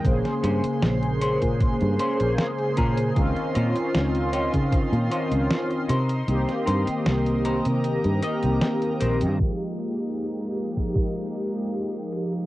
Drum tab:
HH |xxxxxxxxxxxxxxxx|xxxxxxxxxxxxxxxx|xxxxxxxxxxxxxxxx|xxxxxxxxxxxxxxxx|
SD |-o--o-------o---|----o-------o---|-o--o-------o---|----------------|
BD |o------oo-----o-|o------oo-------|----------------|o------oo-------|